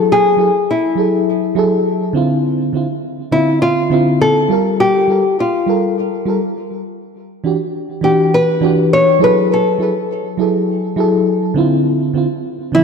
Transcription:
0.00 0.35 F#3 medium
0.00 0.35 E4 medium
0.00 0.36 G#4 medium
0.00 0.12 A4 loud
0.00 0.37 A4 medium
0.12 0.71 G#4 loud
0.37 0.50 F#3 medium
0.37 0.50 E4 medium
0.37 0.51 G#4 medium
0.37 0.52 A4 medium
0.71 1.24 E4 medium
0.95 1.52 F#3 medium
0.95 1.53 E4 medium
0.95 1.54 G#4 medium
1.00 1.54 A4 medium
1.55 2.12 F#3 medium
1.55 2.12 E4 medium
1.55 2.13 G#4 medium
1.55 2.13 A4 loud
2.13 2.70 D3 medium
2.13 2.71 C4 medium
2.13 2.71 E4 medium
2.13 2.72 F4 medium
2.73 2.85 D3 medium
2.73 2.86 C4 medium
2.73 2.87 E4 medium
2.73 2.87 F4 medium
3.31 3.88 D3 medium
3.31 3.88 C4 medium
3.31 3.61 E4 medium
3.31 3.89 E4 medium
3.36 3.90 F4 medium
3.62 4.21 F4 medium
3.90 4.47 D3 medium
3.90 4.47 C4 medium
3.90 4.48 E4 medium
3.90 4.49 F4 loud
4.21 4.76 A4 loud
4.49 5.06 G3 medium
4.49 5.06 F4 medium
4.49 5.07 A4 medium
4.49 5.07 A#4 medium
4.80 5.40 G4 loud
5.08 5.20 G3 medium
5.08 5.21 F4 medium
5.08 5.22 A4 medium
5.12 5.22 A#4 medium
5.40 5.94 F4 medium
5.66 6.23 G3 medium
5.66 6.24 F4 medium
5.66 6.24 A4 medium
5.66 6.25 A#4 medium
6.25 6.38 G3 medium
6.25 6.39 F4 medium
6.25 6.39 A4 medium
6.30 6.40 A#4 medium
7.44 7.56 E3 medium
7.44 7.56 D4 medium
7.44 7.57 F#4 medium
7.44 7.58 G4 medium
8.01 8.58 E3 medium
8.01 8.59 D4 medium
8.01 8.60 F#4 medium
8.01 8.34 G4 medium
8.06 8.60 G4 medium
8.34 8.88 B4 loud
8.61 9.17 E3 medium
8.61 9.18 D4 medium
8.61 9.19 F#4 medium
8.61 9.19 G4 loud
8.93 9.23 C#5 loud
9.19 9.76 F#3 medium
9.19 9.77 E4 medium
9.19 9.77 G#4 medium
9.19 9.78 A4 medium
9.24 9.53 B4 medium
9.54 10.36 A4 medium
9.78 9.91 F#3 medium
9.78 9.92 E4 medium
9.78 9.92 G#4 medium
9.83 9.93 A4 medium
10.37 10.94 F#3 medium
10.37 10.95 E4 medium
10.37 10.95 G#4 medium
10.37 10.96 A4 medium
10.96 11.53 F#3 medium
10.96 11.53 E4 medium
10.96 11.54 G#4 medium
10.96 11.55 A4 loud
11.54 12.11 D3 medium
11.54 12.12 C4 medium
11.54 12.13 E4 medium
11.58 12.13 F4 medium
12.13 12.26 D3 medium
12.13 12.27 C4 medium
12.13 12.27 E4 medium
12.18 12.28 F4 medium
12.72 12.84 D3 medium
12.72 12.84 F3 medium
12.72 12.84 C4 medium
12.72 12.84 E4 loud
12.72 12.84 E4 medium

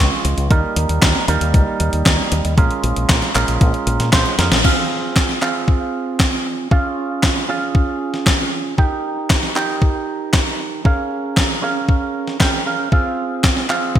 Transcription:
0.00 0.48 G#3 loud
0.00 0.48 C#4 loud
0.00 0.48 F4 loud
0.00 0.47 C#5 loud
0.25 0.35 C#2 loud
0.25 closed hi-hat medium
0.38 0.48 C#2 medium
0.38 closed hi-hat medium
0.50 0.61 D#2 loud
0.50 1.25 G3 medium
0.50 1.25 A#3 medium
0.50 1.25 D#4 medium
0.50 1.25 A#4 loud
0.50 kick loud
0.50 closed hi-hat medium
0.76 0.86 D#2 medium
0.76 closed hi-hat medium
0.89 0.99 D#2 medium
0.89 closed hi-hat medium
1.02 1.12 D#2 loud
1.02 kick loud
1.02 snare loud
1.02 clap medium
1.02 closed hi-hat medium
1.15 snare soft
1.28 1.38 D#2 loud
1.28 2.54 G3 loud
1.28 2.54 A#3 loud
1.28 2.54 D#4 loud
1.28 2.54 A#4 loud
1.28 closed hi-hat medium
1.41 1.51 D#2 medium
1.41 closed hi-hat medium
1.54 1.64 C#2 loud
1.54 kick loud
1.54 closed hi-hat medium
1.80 1.90 D#2 loud
1.80 closed hi-hat medium
1.93 2.03 D#2 medium
1.93 closed hi-hat medium
2.06 2.16 D#2 loud
2.06 kick loud
2.06 snare loud
2.06 clap medium
2.06 closed hi-hat medium
2.32 2.42 D#2 loud
2.32 closed hi-hat medium
2.45 2.55 D#2 medium
2.45 closed hi-hat medium
2.57 2.68 A#1 loud
2.57 3.32 G#3 medium
2.57 3.32 C#4 medium
2.57 3.32 F4 medium
2.57 3.32 A#4 medium
2.57 kick loud
2.57 closed hi-hat medium
2.71 closed hi-hat soft
2.84 2.93 A#1 medium
2.84 closed hi-hat medium
2.96 3.06 A#1 medium
2.96 closed hi-hat medium
3.09 3.19 A#1 loud
3.09 kick loud
3.09 snare loud
3.09 clap loud
3.09 closed hi-hat medium
3.22 snare soft
3.22 closed hi-hat soft
3.35 3.45 A#1 loud
3.35 4.10 G#3 loud
3.35 4.10 C#4 medium
3.35 4.10 F4 medium
3.35 4.10 A#4 loud
3.35 clap medium
3.35 closed hi-hat medium
3.48 3.58 A#1 medium
3.48 closed hi-hat medium
3.61 3.71 A#1 loud
3.61 kick loud
3.61 closed hi-hat medium
3.74 closed hi-hat soft
3.87 3.97 A#1 medium
3.87 closed hi-hat medium
4.00 4.10 A#2 medium
4.00 snare soft
4.00 closed hi-hat medium
4.12 4.23 A#1 loud
4.12 4.35 G#3 loud
4.12 4.35 C#4 medium
4.12 4.36 F4 medium
4.12 4.35 C5 loud
4.12 kick loud
4.12 snare loud
4.12 clap medium
4.12 closed hi-hat medium
4.26 closed hi-hat soft
4.38 4.49 F2 loud
4.38 4.61 G#3 medium
4.38 4.61 C#4 medium
4.38 4.61 F4 medium
4.38 4.61 A#4 medium
4.38 snare medium
4.38 closed hi-hat medium
4.51 4.61 A#1 medium
4.51 snare loud
4.51 closed hi-hat medium
4.64 5.39 C4 medium
4.64 5.39 F4 medium
4.64 5.39 G#4 medium
4.64 5.39 F5 medium
4.64 kick loud
4.64 crash medium
5.16 kick loud
5.16 snare loud
5.16 clap medium
5.29 snare soft
5.42 6.68 C4 medium
5.42 6.68 F4 medium
5.42 6.68 G#4 medium
5.42 6.68 F5 loud
5.42 clap medium
5.68 kick loud
6.20 kick loud
6.20 snare loud
6.20 clap medium
6.71 7.46 C#4 medium
6.71 7.46 F4 medium
6.71 7.46 G#4 medium
6.71 7.46 F5 medium
6.71 kick loud
7.23 kick loud
7.23 snare loud
7.23 clap medium
7.49 8.75 C#4 medium
7.49 8.75 F4 medium
7.49 8.75 G#4 medium
7.49 8.75 F5 loud
7.75 kick loud
8.14 snare soft
8.27 kick loud
8.27 snare loud
8.27 clap medium
8.78 9.53 D#4 medium
8.78 9.53 G4 medium
8.78 9.53 A#4 medium
8.78 9.53 G5 medium
8.78 kick loud
9.30 kick loud
9.30 snare loud
9.30 clap medium
9.43 snare soft
9.56 10.82 D#4 medium
9.56 10.82 G4 medium
9.56 10.82 A#4 medium
9.56 10.82 G5 loud
9.56 clap medium
9.82 kick loud
10.33 kick loud
10.33 snare loud
10.33 clap medium
10.85 11.60 C#4 medium
10.85 11.60 G#4 medium
10.85 11.60 A#4 medium
10.85 11.60 F5 medium
10.85 kick loud
11.37 kick loud
11.37 snare loud
11.37 clap medium
11.62 12.38 C#4 medium
11.62 12.38 G#4 medium
11.62 12.38 A#4 medium
11.62 12.38 F5 loud
11.89 kick loud
12.28 snare soft
12.40 12.63 C#4 medium
12.40 12.63 G#4 medium
12.40 12.63 A#4 medium
12.40 12.63 G5 loud
12.40 kick loud
12.40 snare loud
12.40 clap medium
12.66 12.89 C#4 medium
12.66 12.89 G#4 medium
12.66 12.89 A#4 medium
12.66 12.89 F5 medium
12.92 13.67 C4 medium
12.92 13.67 F4 medium
12.92 13.67 G#4 medium
12.92 13.67 F5 medium
12.92 kick loud
13.44 kick loud
13.44 snare loud
13.44 clap medium
13.57 snare soft
13.70 13.99 C4 medium
13.70 13.99 F4 medium
13.70 13.99 G#4 medium
13.70 13.99 F5 loud
13.70 clap medium
13.96 kick loud

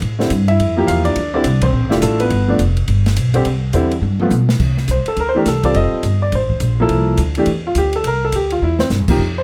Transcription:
0.02 0.30 A2 medium
0.02 kick soft
0.02 ride medium
0.19 0.29 D3 medium
0.19 0.29 G3 soft
0.19 0.30 C4 soft
0.19 0.30 E4 medium
0.19 snare soft
0.30 0.58 G2 medium
0.30 kick soft
0.30 hi-hat pedal soft
0.30 ride medium
0.48 0.76 E4 medium
0.48 0.75 E5 medium
0.48 ride soft
0.59 0.87 F2 medium
0.59 kick soft
0.59 ride medium
0.77 1.14 F3 medium
0.77 1.14 A#3 medium
0.77 1.15 E4 medium
0.77 1.15 G4 medium
0.87 1.15 E2 medium
0.87 1.05 F4 medium
0.87 1.04 F5 loud
0.87 kick soft
0.87 hi-hat pedal soft
0.87 ride medium
1.05 1.33 D4 medium
1.05 1.32 D5 loud
1.05 ride soft
1.16 1.44 D2 medium
1.16 kick soft
1.16 ride medium
1.34 1.44 D3 medium
1.34 1.44 G3 medium
1.34 1.45 C4 medium
1.34 1.61 D4 medium
1.34 1.45 E4 medium
1.34 1.64 D5 medium
1.44 1.72 C2 medium
1.44 kick soft
1.44 hi-hat pedal medium
1.44 ride medium
1.61 1.90 C4 medium
1.61 1.92 C5 medium
1.61 kick medium
1.61 ride medium
1.72 1.82 A#1 medium
1.82 1.91 A1 medium
1.90 2.01 F1 medium
1.90 1.97 G3 medium
1.90 2.03 A3 medium
1.90 2.29 D4 medium
1.90 2.28 E4 medium
1.90 2.29 F4 medium
1.90 1.96 G4 medium
1.90 snare soft
2.02 2.30 A1 medium
2.02 2.20 A3 medium
2.02 2.19 A4 medium
2.02 kick soft
2.02 hi-hat pedal medium
2.02 ride medium
2.20 2.48 B3 medium
2.20 2.47 B4 medium
2.20 ride medium
2.30 2.58 G1 medium
2.30 kick soft
2.30 ride medium
2.48 2.58 F3 medium
2.48 2.59 A3 medium
2.48 2.59 B3 medium
2.48 2.59 D4 medium
2.59 2.87 F1 medium
2.59 kick soft
2.59 hi-hat pedal medium
2.59 ride medium
2.77 ride soft
2.88 3.16 G1 medium
2.88 kick soft
2.88 ride medium
3.06 snare medium
3.06 ride soft
3.16 3.45 B1 medium
3.16 kick soft
3.16 hi-hat pedal medium
3.16 ride medium
3.34 3.44 D3 medium
3.34 3.45 G3 medium
3.34 3.45 C4 medium
3.34 3.45 G4 medium
3.34 ride medium
3.45 3.73 C2 medium
3.45 kick soft
3.45 ride medium
3.73 4.01 E2 medium
3.73 3.90 D3 medium
3.73 3.90 G3 medium
3.73 3.91 C4 medium
3.73 3.91 E4 medium
3.73 kick soft
3.73 hi-hat pedal medium
3.73 ride medium
3.91 ride soft
4.01 4.30 G2 medium
4.01 high tom soft
4.20 4.31 F3 medium
4.20 4.31 A3 medium
4.20 4.31 B3 medium
4.20 4.32 F4 medium
4.20 high tom medium
4.30 4.59 B2 medium
4.30 hi-hat pedal medium
4.30 high tom medium
4.49 snare medium
4.59 4.88 C3 medium
4.59 kick medium
4.59 crash medium
4.77 snare soft
4.88 5.04 C2 medium
4.88 5.07 C5 medium
4.88 kick soft
4.88 hi-hat pedal medium
4.88 ride medium
5.06 5.18 A4 medium
5.06 ride soft
5.17 5.45 D2 medium
5.17 5.28 A#4 medium
5.17 kick soft
5.17 ride medium
5.29 5.37 C5 medium
5.35 5.45 E3 medium
5.35 5.46 A3 medium
5.35 5.46 D4 medium
5.35 5.46 G4 medium
5.35 5.47 A#4 medium
5.45 5.74 C2 medium
5.45 5.64 A4 medium
5.45 kick soft
5.45 snare soft
5.45 hi-hat pedal medium
5.45 ride medium
5.63 6.02 G3 medium
5.63 6.02 C4 medium
5.63 6.02 F4 medium
5.63 6.03 A4 medium
5.63 5.75 D5 medium
5.63 kick medium
5.63 ride soft
5.74 5.91 F1 medium
5.74 6.19 D#5 medium
5.74 kick soft
5.74 ride medium
5.93 muted upright bass stroke soft
6.03 6.31 G1 medium
6.03 kick soft
6.03 hi-hat pedal soft
6.03 ride medium
6.22 6.33 D5 medium
6.32 6.60 A1 medium
6.32 6.87 C5 medium
6.32 kick soft
6.32 ride medium
6.50 kick soft
6.60 6.89 A#1 medium
6.60 kick soft
6.60 hi-hat pedal medium
6.60 ride medium
6.80 7.17 F3 medium
6.80 7.17 A#3 medium
6.80 7.18 E4 medium
6.80 7.18 A4 medium
6.89 7.17 C2 medium
6.89 kick soft
6.89 ride medium
7.17 7.46 D2 medium
7.17 kick soft
7.17 hi-hat pedal medium
7.17 ride medium
7.35 7.47 E3 medium
7.35 7.47 A3 medium
7.35 7.47 D4 medium
7.35 ride soft
7.39 7.48 G4 medium
7.46 7.75 E2 medium
7.46 kick soft
7.46 ride medium
7.67 7.77 F4 medium
7.75 8.03 D2 medium
7.75 7.94 G4 medium
7.75 kick soft
7.75 hi-hat pedal medium
7.75 ride medium
7.93 8.06 A4 medium
7.93 ride soft
8.04 8.32 C2 medium
8.04 8.23 A#4 medium
8.04 kick soft
8.04 ride medium
8.25 8.34 A4 medium
8.32 8.61 D2 medium
8.32 8.52 G4 medium
8.32 kick soft
8.32 hi-hat pedal medium
8.32 ride medium
8.50 8.62 F4 medium
8.50 ride soft
8.62 8.89 E2 medium
8.62 8.80 E4 medium
8.79 8.87 C4 medium
8.79 snare medium
8.90 9.00 G2 medium
8.90 snare medium
8.90 hi-hat pedal medium
9.00 9.08 E2 soft
9.08 9.18 C2 medium
9.08 9.18 F3 medium
9.08 9.19 A#3 medium
9.08 9.19 D#4 medium
9.08 9.20 G4 medium
9.08 kick medium
9.08 crash medium
9.19 9.43 F2 medium
9.19 kick soft
9.38 9.43 C5 medium

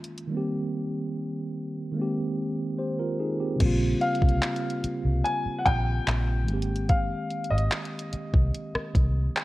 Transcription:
0.04 closed hi-hat soft
0.18 closed hi-hat soft
0.27 1.90 D#3 medium
0.27 1.92 G3 medium
0.32 1.93 A#3 medium
0.32 1.94 C4 medium
0.37 1.96 G4 medium
1.92 3.55 D#3 medium
1.92 3.56 G#3 medium
1.96 3.57 A#3 medium
1.96 2.78 C4 medium
2.01 2.78 G4 medium
2.79 2.98 G4 medium
2.79 2.98 C5 medium
2.99 3.19 F4 medium
2.99 3.19 A#4 medium
3.20 3.39 D#4 medium
3.20 3.39 G#4 medium
3.40 3.62 C4 soft
3.40 3.79 G4 medium
3.56 6.42 C#3 medium
3.56 6.43 G3 medium
3.60 3.93 A#1 medium
3.60 6.44 A#3 medium
3.60 6.46 C4 medium
3.60 kick loud
3.60 closed hi-hat medium
3.60 crash medium
3.66 6.47 F4 medium
4.01 5.29 F5 medium
4.01 closed hi-hat soft
4.15 closed hi-hat soft
4.22 4.39 C2 medium
4.22 kick medium
4.29 closed hi-hat soft
4.43 clap loud
4.43 closed hi-hat soft
4.56 closed hi-hat soft
4.70 closed hi-hat medium
4.84 muted fingered electric bass stroke soft
4.84 closed hi-hat medium
5.05 5.21 C2 medium
5.24 5.60 G#5 loud
5.24 closed hi-hat medium
5.46 muted fingered electric bass stroke soft
5.59 5.66 F#5 medium
5.66 5.99 A#1 medium
5.66 6.93 G5 loud
5.66 kick medium
5.66 closed hi-hat medium
6.07 6.49 A#1 medium
6.07 clap loud
6.07 closed hi-hat medium
6.44 9.44 D#3 medium
6.44 9.44 G#3 medium
6.48 7.13 G#1 loud
6.48 9.44 A#3 medium
6.48 9.44 C4 medium
6.48 closed hi-hat soft
6.54 9.44 G4 medium
6.62 closed hi-hat soft
6.76 closed hi-hat medium
6.89 7.53 F5 medium
6.89 kick loud
6.89 closed hi-hat medium
7.30 closed hi-hat soft
7.44 closed hi-hat soft
7.50 7.67 G#1 medium
7.50 9.44 D#5 medium
7.58 closed hi-hat soft
7.71 clap loud
7.71 closed hi-hat soft
7.85 closed hi-hat soft
7.99 closed hi-hat medium
8.13 muted fingered electric bass stroke soft
8.13 closed hi-hat medium
8.34 8.50 C2 medium
8.34 kick medium
8.54 closed hi-hat medium
8.75 muted fingered electric bass stroke soft
8.75 cross-stick loud
8.95 9.27 C2 medium
8.95 kick medium
8.95 closed hi-hat medium
9.36 clap loud
9.36 closed hi-hat medium

